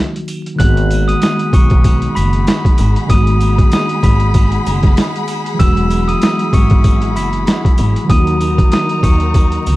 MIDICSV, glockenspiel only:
0, 0, Header, 1, 2, 480
1, 0, Start_track
1, 0, Key_signature, 5, "minor"
1, 0, Tempo, 625000
1, 458, Time_signature, 4, 2, 24, 8
1, 7498, End_track
2, 0, Start_track
2, 0, Title_t, "Glockenspiel"
2, 0, Program_c, 0, 9
2, 449, Note_on_c, 0, 90, 107
2, 455, Note_on_c, 0, 102, 86
2, 805, Note_off_c, 0, 90, 0
2, 808, Note_off_c, 0, 102, 0
2, 827, Note_on_c, 0, 87, 86
2, 834, Note_on_c, 0, 99, 61
2, 925, Note_off_c, 0, 87, 0
2, 928, Note_off_c, 0, 99, 0
2, 941, Note_on_c, 0, 87, 85
2, 949, Note_on_c, 0, 99, 63
2, 1156, Note_off_c, 0, 87, 0
2, 1160, Note_off_c, 0, 99, 0
2, 1179, Note_on_c, 0, 85, 80
2, 1185, Note_on_c, 0, 97, 61
2, 1395, Note_off_c, 0, 85, 0
2, 1398, Note_off_c, 0, 97, 0
2, 1653, Note_on_c, 0, 83, 89
2, 1659, Note_on_c, 0, 95, 65
2, 1775, Note_off_c, 0, 83, 0
2, 1779, Note_off_c, 0, 95, 0
2, 2380, Note_on_c, 0, 87, 106
2, 2387, Note_on_c, 0, 99, 79
2, 2831, Note_off_c, 0, 87, 0
2, 2834, Note_off_c, 0, 99, 0
2, 2867, Note_on_c, 0, 87, 88
2, 2873, Note_on_c, 0, 99, 73
2, 3079, Note_off_c, 0, 87, 0
2, 3082, Note_off_c, 0, 99, 0
2, 3097, Note_on_c, 0, 83, 84
2, 3103, Note_on_c, 0, 95, 62
2, 3921, Note_off_c, 0, 83, 0
2, 3923, Note_off_c, 0, 95, 0
2, 4296, Note_on_c, 0, 88, 112
2, 4301, Note_on_c, 0, 100, 81
2, 4648, Note_off_c, 0, 88, 0
2, 4651, Note_off_c, 0, 100, 0
2, 4668, Note_on_c, 0, 87, 91
2, 4675, Note_on_c, 0, 99, 61
2, 4765, Note_off_c, 0, 87, 0
2, 4769, Note_off_c, 0, 99, 0
2, 4786, Note_on_c, 0, 87, 85
2, 4792, Note_on_c, 0, 99, 60
2, 4999, Note_off_c, 0, 87, 0
2, 5002, Note_off_c, 0, 99, 0
2, 5020, Note_on_c, 0, 85, 79
2, 5026, Note_on_c, 0, 97, 64
2, 5235, Note_off_c, 0, 85, 0
2, 5238, Note_off_c, 0, 97, 0
2, 5498, Note_on_c, 0, 83, 86
2, 5505, Note_on_c, 0, 95, 66
2, 5619, Note_off_c, 0, 83, 0
2, 5622, Note_off_c, 0, 95, 0
2, 6219, Note_on_c, 0, 87, 109
2, 6225, Note_on_c, 0, 99, 78
2, 6670, Note_off_c, 0, 87, 0
2, 6673, Note_off_c, 0, 99, 0
2, 6701, Note_on_c, 0, 87, 95
2, 6706, Note_on_c, 0, 99, 71
2, 6916, Note_off_c, 0, 87, 0
2, 6919, Note_off_c, 0, 99, 0
2, 6935, Note_on_c, 0, 85, 79
2, 6941, Note_on_c, 0, 97, 66
2, 7498, Note_off_c, 0, 85, 0
2, 7498, Note_off_c, 0, 97, 0
2, 7498, End_track
0, 0, End_of_file